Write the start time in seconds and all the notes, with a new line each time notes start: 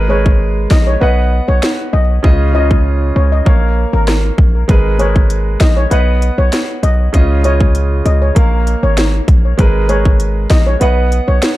Already playing: G#1 G#3 G#4 A#4 B4
0.09 G#3 G#4 A#4 B4 C#5
0.26 kick
0.71 A#1 D#5, kick, snare
0.87 C#5
1.00 B1 B3 B4 D#5 F#5
1.48 B1 C#5
1.63 snare
1.93 B1 D#5
2.23 C#2 C#3 C#4 F4 D#5, kick
2.53 C#3 C#4 F4 D#5
2.71 kick
3.16 C#2 C#5
3.32 D#5
3.45 A#1 A#3 A#4 C#5 F5, kick
3.93 G#1 A#4
4.08 cross-stick, snare
4.38 A#1, kick
4.68 G#1 G#3 G#4 A#4 B4, kick, closed hi-hat
4.98 G#3 G#4 A#4 B4 C#5, closed hi-hat
5.16 kick
5.30 closed hi-hat
5.61 A#1 D#5, kick, snare, closed hi-hat
5.77 C#5
5.90 B1 B3 B4 D#5 F#5, closed hi-hat
6.22 closed hi-hat
6.38 B1 C#5
6.53 snare, closed hi-hat
6.83 B1 D#5, closed hi-hat
7.13 C#2 C#3 C#4 F4 D#5, kick, closed hi-hat
7.43 C#3 C#4 F4 C#5 D#5, closed hi-hat
7.61 kick
7.75 closed hi-hat
8.06 C#2 D#5, closed hi-hat
8.22 C#5
8.35 A#1 A#3 A#4 C#5 F5, kick, closed hi-hat
8.67 closed hi-hat
8.83 G#1 C#5
8.97 snare, closed hi-hat
9.28 A#1, kick, closed hi-hat
9.57 G#1 G#3 G#4 A#4 B4, kick, closed hi-hat
9.88 G#3 G#4 A#4 B4 C#5, closed hi-hat
10.05 kick
10.20 closed hi-hat
10.50 A#1 D#5, kick, snare, closed hi-hat
10.67 C#5
10.80 B1 B3 B4 D#5 F#5, closed hi-hat
11.12 closed hi-hat
11.28 B1 C#5
11.42 snare, closed hi-hat